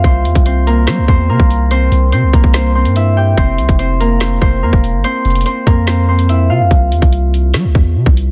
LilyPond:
<<
  \new Staff \with { instrumentName = "Harp" } { \time 4/4 \key c \phrygian \tempo 4 = 144 <c' c''>4 <c' c''>8 <bes bes'>8 <c' c''>8 <c' c''>8 <bes bes'>4 | <c' c''>4 <c' c''>8 <bes bes'>8 <c' c''>8 <c' c''>8 <e' e''>8 <g' g''>8 | <c' c''>4 <c' c''>8 <bes bes'>8 <c' c''>8 <c' c''>8 <bes bes'>4 | <c' c''>4 <c' c''>8 <bes bes'>8 <c' c''>8 <c' c''>8 <e' e''>8 <f' f''>8 |
r1 | }
  \new Staff \with { instrumentName = "808-style bass" } { \clef bass \time 4/4 \key c \phrygian c,8 e,16 c,4~ c,16 g16 c,16 e,8 c16 c,8.~ | c,8 c,8 c16 c,16 c,16 c,4 g,4~ g,16 | f,,8 c,16 f,,4.~ f,,16 f,,8 f,16 e,,8 g,,16 | r8 f,,8 r8 f,2 c16 f,16 |
c,8 e,16 c,4~ c,16 g16 c,16 e,8 c16 c,8. | }
  \new DrumStaff \with { instrumentName = "Drums" } \drummode { \time 4/4 <hh bd>8 hh16 <hh bd>16 hh8 hh8 <hh sn>8 bd8 r16 bd16 hh8 | hh8 hh8 hh8 <hh bd>16 bd16 <hh sn>8. hh16 hh4 | <hh bd>8 hh16 <hh bd>16 hh8 hh8 <hh sn>8 bd8 r16 bd16 hh8 | hh8 hh32 hh32 hh32 hh32 hh8 <hh bd>8 <hh sn>8. hh16 hh4 |
<hh bd>8 hh16 <hh bd>16 hh8 hh8 <hh sn>8 bd8 r16 bd16 hh8 | }
>>